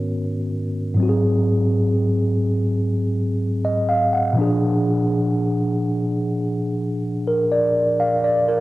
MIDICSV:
0, 0, Header, 1, 2, 480
1, 0, Start_track
1, 0, Tempo, 967742
1, 487, Time_signature, 4, 2, 24, 8
1, 4267, End_track
2, 0, Start_track
2, 0, Title_t, "Tine electric piano"
2, 0, Program_c, 0, 4
2, 0, Control_c, 0, 64, 127
2, 0, Note_on_c, 0, 44, 78
2, 0, Note_on_c, 0, 51, 73
2, 0, Note_on_c, 0, 59, 71
2, 0, Note_on_c, 0, 61, 69
2, 0, Note_on_c, 0, 66, 76
2, 0, Note_on_c, 0, 70, 89
2, 458, Note_off_c, 0, 44, 0
2, 462, Note_off_c, 0, 51, 0
2, 466, Note_off_c, 0, 59, 0
2, 468, Note_on_c, 0, 44, 79
2, 470, Note_off_c, 0, 61, 0
2, 474, Note_off_c, 0, 66, 0
2, 482, Note_on_c, 0, 54, 70
2, 493, Control_c, 0, 64, 0
2, 495, Note_off_c, 0, 70, 0
2, 496, Note_on_c, 0, 60, 76
2, 509, Note_on_c, 0, 66, 70
2, 530, Note_off_c, 0, 66, 0
2, 541, Note_on_c, 0, 68, 88
2, 571, Control_c, 0, 64, 127
2, 1809, Note_on_c, 0, 75, 66
2, 1922, Note_off_c, 0, 75, 0
2, 1928, Note_on_c, 0, 77, 74
2, 2041, Note_off_c, 0, 77, 0
2, 2049, Note_on_c, 0, 78, 69
2, 2137, Note_off_c, 0, 44, 0
2, 2144, Note_off_c, 0, 54, 0
2, 2148, Note_on_c, 0, 46, 78
2, 2151, Note_off_c, 0, 60, 0
2, 2161, Note_on_c, 0, 53, 74
2, 2172, Control_c, 0, 64, 0
2, 2174, Note_off_c, 0, 68, 0
2, 2175, Note_on_c, 0, 62, 74
2, 2189, Note_on_c, 0, 68, 92
2, 2263, Control_c, 0, 64, 127
2, 2276, Note_off_c, 0, 78, 0
2, 3609, Note_on_c, 0, 70, 64
2, 3722, Note_off_c, 0, 70, 0
2, 3729, Note_on_c, 0, 74, 73
2, 3956, Note_off_c, 0, 74, 0
2, 3968, Note_on_c, 0, 77, 72
2, 4057, Note_off_c, 0, 46, 0
2, 4064, Note_off_c, 0, 53, 0
2, 4071, Note_off_c, 0, 62, 0
2, 4078, Note_off_c, 0, 68, 0
2, 4081, Note_off_c, 0, 77, 0
2, 4088, Note_on_c, 0, 74, 75
2, 4201, Note_off_c, 0, 74, 0
2, 4208, Note_on_c, 0, 70, 68
2, 4267, Note_off_c, 0, 70, 0
2, 4267, End_track
0, 0, End_of_file